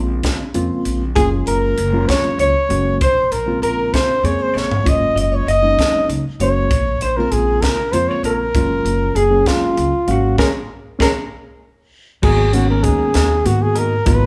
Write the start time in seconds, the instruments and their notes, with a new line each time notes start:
Already playing: upright bass A#1, reed electric piano C#3 G#3 A#3 C4 F4
0.23 kick, snare, closed hi-hat
0.54 upright bass F2, reed electric piano C#3 G#3 A#3 C4 F4, closed hi-hat
0.85 upright bass A#1, closed hi-hat
1.15 upright bass F#1, reed electric piano F#3 G#3 A#3 C#4 F4, hollow-body jazz guitar G#4, muted trumpet G#4, kick, closed hi-hat
1.47 upright bass F#1, muted trumpet A#4, hollow-body jazz guitar A#4, closed hi-hat
1.78 upright bass F#1, closed hi-hat
1.93 reed electric piano F#3 G#3 A#3 C#4 F4
2.09 muted trumpet C#5, hollow-body jazz guitar C#5, kick, snare, closed hi-hat
2.39 upright bass C#2, hollow-body jazz guitar C#5, muted trumpet C#5, closed hi-hat
2.69 upright bass F#1, reed electric piano F#3 G#3 A#3 C#4 F#4, closed hi-hat
3.01 upright bass A#1, hollow-body jazz guitar C5, muted trumpet C5, kick, closed hi-hat
3.32 upright bass A#1, muted trumpet A#4, hollow-body jazz guitar A#4, closed hi-hat
3.46 reed electric piano C#3 G#3 A#3 C4 F4
3.62 upright bass A#1, muted trumpet A#4, hollow-body jazz guitar A#4, closed hi-hat
3.94 muted trumpet C5, hollow-body jazz guitar C5, kick, snare, closed hi-hat
4.23 upright bass F2, reed electric piano C#3 G#3 A#3 C4 G#4, hollow-body jazz guitar C#5, muted trumpet C#5, closed hi-hat
4.39 hollow-body jazz guitar C5
4.43 muted trumpet C5
4.54 upright bass A#1, hollow-body jazz guitar C#5, muted trumpet C#5, snare
4.71 floor tom
4.84 upright bass F#1, reed electric piano F#3 G#3 A#3 C#4 F4, hollow-body jazz guitar D#5, kick, closed hi-hat
4.89 muted trumpet D#5
5.15 upright bass F#1, hollow-body jazz guitar D#5, closed hi-hat
5.20 muted trumpet D#5
5.32 hollow-body jazz guitar C#5, muted trumpet C#5
5.47 upright bass F#1, hollow-body jazz guitar D#5, closed hi-hat
5.51 muted trumpet D#5
5.62 reed electric piano F#3 G#3 A#3 C#4 D#4
5.79 kick, snare, closed hi-hat
6.09 upright bass C#2, closed hi-hat
6.40 upright bass F#1, reed electric piano F#3 G#3 A#3 C#4 F#4, hollow-body jazz guitar C#5, muted trumpet C#5, closed hi-hat
6.71 upright bass A#1, kick, closed hi-hat
7.01 upright bass A#1, hollow-body jazz guitar C5, muted trumpet C5, closed hi-hat
7.17 reed electric piano C#3 G#3 A#3 C4 F4, muted trumpet A#4, hollow-body jazz guitar A#4
7.32 upright bass A#1, muted trumpet G#4, hollow-body jazz guitar G#4, closed hi-hat
7.62 muted trumpet A#4, hollow-body jazz guitar A#4, kick, snare, closed hi-hat
7.92 upright bass F2, reed electric piano C#3 G#3 A#3 C4 F4, muted trumpet C5, hollow-body jazz guitar C5, closed hi-hat
8.08 muted trumpet C#5, hollow-body jazz guitar C#5
8.23 upright bass A#1, muted trumpet A#4, hollow-body jazz guitar A#4, closed hi-hat
8.54 upright bass F#1, reed electric piano F#3 G#3 A#3 C#4 F4, kick, closed hi-hat
8.85 upright bass F#1, closed hi-hat
9.15 upright bass F#1, muted trumpet G#4, hollow-body jazz guitar G#4, closed hi-hat
9.30 reed electric piano F#3 G#3 A#3 C#4 G#4
9.46 muted trumpet F4, hollow-body jazz guitar F4, kick, snare, closed hi-hat
9.77 upright bass C#2, closed hi-hat
10.07 upright bass G#1, reed electric piano F#3 G#3 A#3 C#4 F5, muted trumpet F#4, hollow-body jazz guitar F#4, closed hi-hat
10.38 upright bass A#1, reed electric piano G#3 A#3 C#4, hollow-body jazz guitar G#4 A#4 C#5, muted trumpet A#4, kick, snare
10.99 upright bass A#1, reed electric piano G#3 A#3 C#4, hollow-body jazz guitar G#4 A#4 C#5, muted trumpet A#4, kick, snare
12.22 upright bass G#1, reed electric piano D#3 G#3 A#3 B3 F#4, clean electric guitar F#3 B3 D#4 A#4, muted trumpet G#4, kick, crash
12.53 reed electric piano D#3 G#3 A#3 B3 C#4, muted trumpet F#4, closed hi-hat
12.71 muted trumpet A#4
12.83 upright bass D#2, clean electric guitar F#3 B3 D#4 A#4, muted trumpet G#4, kick, closed hi-hat
13.14 upright bass D#2, clean electric guitar F#3 B3 D#4 A#4, snare, closed hi-hat
13.45 upright bass G#2, reed electric piano D#3 G#3 A#3 B3 F#4, muted trumpet F#4, closed hi-hat
13.62 muted trumpet G#4
13.75 clean electric guitar B3 D#4 A#4, muted trumpet A#4, closed hi-hat
14.06 upright bass G#1, reed electric piano D#3 G#3 A#3 B3 F4, clean electric guitar F#3 B3 D#4 A#4, muted trumpet B4, kick, closed hi-hat